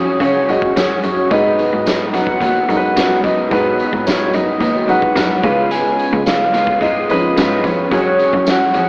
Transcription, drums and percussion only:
0.20 kick medium
0.20 closed hi-hat medium
0.49 closed hi-hat medium
0.62 kick loud
0.76 snare loud
0.76 closed hi-hat loud
0.76 tambourine medium
1.03 closed hi-hat medium
1.31 kick loud
1.31 closed hi-hat medium
1.59 closed hi-hat medium
1.86 snare loud
1.86 closed hi-hat medium
1.86 tambourine medium
2.14 snare soft
2.14 closed hi-hat medium
2.27 kick loud
2.41 kick medium
2.41 closed hi-hat medium
2.70 closed hi-hat medium
2.97 snare loud
2.97 closed hi-hat loud
2.97 tambourine medium
3.24 kick medium
3.24 closed hi-hat medium
3.51 kick loud
3.51 closed hi-hat medium
3.79 closed hi-hat medium
3.93 kick medium
4.07 snare loud
4.07 closed hi-hat medium
4.07 tambourine medium
4.33 closed hi-hat medium
4.61 kick medium
4.61 closed hi-hat medium
4.89 closed hi-hat medium
5.02 kick loud
5.16 snare loud
5.16 closed hi-hat loud
5.16 tambourine medium
5.43 kick loud
5.43 closed hi-hat medium
5.71 closed hi-hat loud
5.99 closed hi-hat medium
6.26 snare loud
6.26 closed hi-hat medium
6.26 tambourine medium
6.54 snare soft
6.54 closed hi-hat medium
6.67 kick loud
6.81 kick medium
6.81 closed hi-hat medium
7.10 closed hi-hat medium
7.37 snare loud
7.37 closed hi-hat loud
7.37 tambourine medium
7.64 kick medium
7.64 closed hi-hat medium
7.92 kick loud
7.92 closed hi-hat medium
8.19 closed hi-hat medium
8.33 kick medium
8.46 snare loud
8.46 closed hi-hat medium
8.46 tambourine medium
8.74 closed hi-hat medium

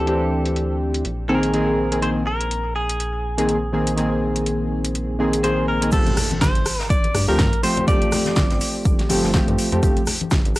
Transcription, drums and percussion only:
0.07 closed hi-hat medium
0.46 closed hi-hat medium
0.56 closed hi-hat soft
0.94 closed hi-hat medium
1.05 closed hi-hat medium
1.43 closed hi-hat medium
1.54 closed hi-hat soft
1.92 closed hi-hat medium
2.02 closed hi-hat medium
2.41 closed hi-hat medium
2.51 closed hi-hat medium
2.89 closed hi-hat medium
3.00 closed hi-hat medium
3.38 closed hi-hat medium
3.49 closed hi-hat medium
3.87 closed hi-hat medium
3.98 closed hi-hat medium
4.36 closed hi-hat medium
4.46 closed hi-hat medium
4.85 closed hi-hat medium
4.95 closed hi-hat medium
5.33 closed hi-hat medium
5.44 closed hi-hat medium
5.82 closed hi-hat medium
5.92 kick loud
5.92 closed hi-hat medium
5.92 crash loud
5.92 shaker medium
6.07 closed hi-hat medium
6.07 closed hi-hat soft
6.07 high conga medium
6.17 cross-stick medium
6.17 open hi-hat loud
6.17 low conga medium
6.17 shaker medium
6.31 closed hi-hat soft
6.31 high conga loud
6.41 kick loud
6.41 snare loud
6.41 closed hi-hat medium
6.41 shaker loud
6.55 closed hi-hat medium
6.66 cross-stick medium
6.66 open hi-hat loud
6.66 shaker medium
6.80 snare medium
6.90 kick loud
6.90 closed hi-hat medium
6.90 shaker medium
7.04 closed hi-hat medium
7.04 muted conga medium
7.15 cross-stick medium
7.15 open hi-hat loud
7.15 low conga medium
7.15 shaker medium
7.39 kick loud
7.39 snare loud
7.39 closed hi-hat medium
7.39 shaker medium
7.52 closed hi-hat medium
7.52 high conga medium
7.63 open hi-hat medium
7.63 shaker medium
7.77 closed hi-hat soft
7.77 low conga medium
7.88 kick loud
7.88 closed hi-hat medium
7.88 shaker medium
8.02 closed hi-hat medium
8.02 closed hi-hat soft
8.02 high conga medium
8.12 cross-stick medium
8.12 snare soft
8.12 open hi-hat loud
8.12 low conga medium
8.12 shaker medium
8.26 snare medium
8.26 closed hi-hat soft
8.26 muted conga soft
8.26 high conga medium
8.36 kick loud
8.36 snare loud
8.36 closed hi-hat medium
8.36 shaker medium
8.50 snare soft
8.50 closed hi-hat medium
8.60 open hi-hat loud
8.60 shaker medium
8.85 kick loud
8.85 closed hi-hat medium
8.85 shaker loud
8.99 snare soft
8.99 closed hi-hat medium
9.09 open hi-hat loud
9.09 muted conga medium
9.09 low conga medium
9.09 shaker medium
9.24 snare soft
9.34 kick loud
9.34 snare loud
9.34 closed hi-hat medium
9.34 shaker medium
9.48 closed hi-hat medium
9.48 muted conga medium
9.48 high conga medium
9.58 open hi-hat medium
9.58 muted conga soft
9.58 shaker medium
9.72 closed hi-hat soft
9.72 low conga medium
9.83 kick loud
9.83 closed hi-hat medium
9.83 shaker medium
9.96 closed hi-hat soft
9.96 closed hi-hat medium
9.96 high conga medium
10.06 cross-stick medium
10.06 open hi-hat loud
10.06 low conga medium
10.06 shaker medium
10.21 closed hi-hat soft
10.21 high conga medium
10.31 kick loud
10.31 snare loud
10.31 closed hi-hat medium
10.31 shaker medium
10.45 closed hi-hat medium
10.56 cross-stick medium
10.56 open hi-hat loud
10.56 shaker medium

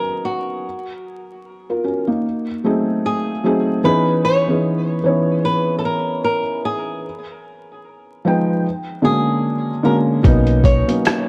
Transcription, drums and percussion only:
10.24 kick loud
10.24 closed hi-hat medium
10.47 closed hi-hat soft
10.64 kick medium
10.64 closed hi-hat medium
10.89 closed hi-hat soft
11.05 cross-stick loud
11.05 closed hi-hat medium
11.05 tambourine medium

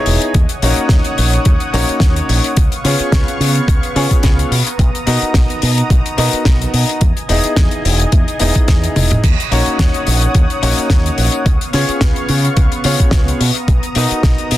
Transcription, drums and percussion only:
0.06 open hi-hat medium
0.22 closed hi-hat medium
0.34 kick loud
0.34 closed hi-hat medium
0.49 closed hi-hat soft
0.62 open hi-hat loud
0.76 closed hi-hat medium
0.89 kick loud
0.89 snare loud
0.89 closed hi-hat medium
1.04 closed hi-hat soft
1.18 open hi-hat medium
1.33 closed hi-hat medium
1.45 kick loud
1.45 closed hi-hat medium
1.60 closed hi-hat soft
1.74 open hi-hat loud
1.89 closed hi-hat medium
2.00 kick loud
2.00 snare loud
2.00 closed hi-hat medium
2.16 closed hi-hat soft
2.29 open hi-hat medium
2.44 closed hi-hat medium
2.57 kick loud
2.57 closed hi-hat medium
2.72 closed hi-hat soft
2.85 open hi-hat loud
2.99 closed hi-hat medium
3.12 kick loud
3.12 snare loud
3.12 closed hi-hat medium
3.28 closed hi-hat soft
3.41 open hi-hat loud
3.55 closed hi-hat medium
3.68 kick loud
3.68 closed hi-hat medium
3.83 closed hi-hat soft
3.96 open hi-hat loud
4.11 kick medium
4.11 closed hi-hat medium
4.23 kick loud
4.23 snare loud
4.23 closed hi-hat medium
4.39 closed hi-hat medium
4.52 open hi-hat loud
4.67 closed hi-hat medium
4.79 kick loud
4.79 closed hi-hat medium
4.95 closed hi-hat soft
5.07 open hi-hat loud
5.22 closed hi-hat medium
5.34 kick loud
5.34 snare loud
5.34 closed hi-hat medium
5.50 closed hi-hat soft
5.62 open hi-hat medium
5.78 closed hi-hat medium
5.90 kick loud
5.90 closed hi-hat medium
6.06 closed hi-hat soft
6.18 open hi-hat loud
6.33 closed hi-hat medium
6.45 kick loud
6.45 snare loud
6.45 closed hi-hat medium
6.62 closed hi-hat soft
6.74 open hi-hat medium
6.89 closed hi-hat medium
7.01 kick loud
7.01 closed hi-hat medium
7.17 closed hi-hat soft
7.29 open hi-hat loud
7.44 closed hi-hat medium
7.56 kick loud
7.56 snare loud
7.56 closed hi-hat medium
7.71 closed hi-hat soft
7.85 open hi-hat loud
8.00 closed hi-hat medium
8.12 kick loud
8.12 closed hi-hat medium
8.28 closed hi-hat soft
8.39 open hi-hat loud
8.55 kick medium
8.55 closed hi-hat medium
8.68 kick loud
8.68 snare loud
8.68 closed hi-hat medium
8.84 closed hi-hat soft
8.96 open hi-hat medium
8.96 high tom medium
9.11 closed hi-hat medium
9.11 mid tom medium
9.24 kick loud
9.24 closed hi-hat medium
9.24 crash medium
9.40 closed hi-hat soft
9.52 open hi-hat medium
9.66 closed hi-hat medium
9.79 kick loud
9.79 snare loud
9.79 closed hi-hat medium
9.94 closed hi-hat soft
10.07 open hi-hat loud
10.22 closed hi-hat medium
10.35 kick loud
10.35 closed hi-hat medium
10.50 closed hi-hat soft
10.63 open hi-hat loud
10.78 closed hi-hat medium
10.90 kick loud
10.90 snare loud
10.90 closed hi-hat medium
11.06 closed hi-hat soft
11.18 open hi-hat loud
11.32 closed hi-hat medium
11.46 kick loud
11.46 closed hi-hat medium
11.61 closed hi-hat soft
11.73 open hi-hat loud
11.89 closed hi-hat medium
12.01 kick loud
12.01 snare loud
12.01 closed hi-hat medium
12.16 closed hi-hat soft
12.29 open hi-hat medium
12.45 closed hi-hat medium
12.57 kick loud
12.57 closed hi-hat medium
12.72 closed hi-hat soft
12.84 open hi-hat loud
13.00 kick medium
13.00 closed hi-hat medium
13.11 kick loud
13.11 snare loud
13.11 closed hi-hat medium
13.28 closed hi-hat medium
13.41 open hi-hat loud
13.55 closed hi-hat medium
13.68 kick loud
13.68 closed hi-hat medium
13.83 closed hi-hat soft
13.95 open hi-hat loud
14.11 closed hi-hat medium
14.23 kick loud
14.23 snare loud
14.23 closed hi-hat medium
14.38 closed hi-hat soft
14.51 open hi-hat loud

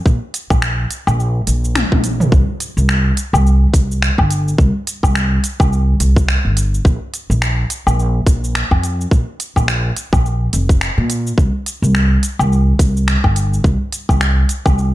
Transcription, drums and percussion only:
0.06 kick loud
0.06 cabasa soft
0.34 closed hi-hat medium
0.34 cabasa medium
0.50 kick loud
0.50 cabasa soft
0.50 low woodblock medium
0.62 finger snap loud
0.62 cabasa soft
0.91 closed hi-hat medium
0.91 cabasa medium
1.07 cabasa soft
1.07 low woodblock medium
1.20 cabasa soft
1.47 closed hi-hat medium
1.47 cabasa medium
1.64 cabasa soft
1.75 finger snap loud
1.75 high tom medium
1.75 cabasa soft
1.92 kick medium
1.92 high tom medium
2.04 closed hi-hat medium
2.04 cabasa medium
2.20 mid tom medium
2.20 cabasa soft
2.32 kick loud
2.32 cabasa soft
2.60 closed hi-hat medium
2.60 cabasa medium
2.78 cabasa soft
2.89 finger snap loud
2.89 cabasa soft
3.17 closed hi-hat medium
3.17 cabasa medium
3.34 cabasa soft
3.34 low woodblock medium
3.47 cabasa soft
3.74 kick loud
3.74 closed hi-hat medium
3.74 cabasa medium
3.92 cabasa soft
4.02 finger snap medium
4.02 cabasa soft
4.18 kick medium
4.18 low woodblock medium
4.31 closed hi-hat medium
4.31 cabasa medium
4.48 cabasa soft
4.58 kick loud
4.58 cabasa soft
4.87 closed hi-hat medium
4.87 cabasa medium
5.03 kick medium
5.03 cabasa soft
5.03 low woodblock medium
5.15 finger snap loud
5.15 cabasa soft
5.44 closed hi-hat medium
5.44 cabasa medium
5.60 kick loud
5.60 cabasa soft
5.60 low woodblock medium
5.73 cabasa soft
6.00 closed hi-hat medium
6.00 cabasa medium
6.16 kick loud
6.16 cabasa soft
6.29 finger snap loud
6.29 cabasa soft
6.57 closed hi-hat medium
6.57 cabasa medium
6.74 cabasa soft
6.85 kick loud
6.85 cabasa soft
7.14 closed hi-hat medium
7.14 cabasa medium
7.31 cabasa soft
7.42 finger snap loud
7.42 cabasa soft
7.70 closed hi-hat medium
7.70 cabasa medium
7.87 cabasa soft
7.87 low woodblock medium
7.99 cabasa soft
8.27 kick loud
8.27 closed hi-hat medium
8.27 cabasa medium
8.44 cabasa soft
8.55 finger snap loud
8.55 cabasa soft
8.71 kick medium
8.71 low woodblock medium
8.84 closed hi-hat medium
8.84 cabasa medium
9.01 cabasa soft
9.11 kick loud
9.11 cabasa soft
9.40 closed hi-hat medium
9.40 cabasa medium
9.56 kick medium
9.56 cabasa soft
9.56 low woodblock medium
9.68 finger snap loud
9.68 cabasa soft
9.97 closed hi-hat medium
9.97 cabasa medium
10.13 kick loud
10.13 cabasa soft
10.13 low woodblock medium
10.26 cabasa soft
10.53 closed hi-hat medium
10.53 cabasa medium
10.69 kick loud
10.69 cabasa soft
10.81 finger snap loud
10.81 cabasa soft
11.10 closed hi-hat medium
11.10 cabasa medium
11.27 cabasa soft
11.38 kick loud
11.38 cabasa soft
11.66 closed hi-hat medium
11.66 cabasa medium
11.84 cabasa soft
11.95 finger snap medium
11.95 cabasa soft
12.23 closed hi-hat medium
12.23 cabasa medium
12.39 cabasa soft
12.39 low woodblock medium
12.52 cabasa soft
12.79 kick loud
12.79 closed hi-hat medium
12.79 cabasa medium
12.97 cabasa soft
13.08 finger snap loud
13.08 cabasa soft
13.24 kick medium
13.24 low woodblock medium
13.36 closed hi-hat medium
13.36 cabasa medium
13.54 cabasa soft
13.64 kick loud
13.64 cabasa soft
13.92 closed hi-hat medium
13.92 cabasa medium
14.09 kick medium
14.09 cabasa soft
14.09 low woodblock medium
14.21 finger snap loud
14.21 cabasa soft
14.49 closed hi-hat medium
14.49 cabasa medium
14.66 kick loud
14.66 cabasa soft
14.66 low woodblock medium
14.79 cabasa soft

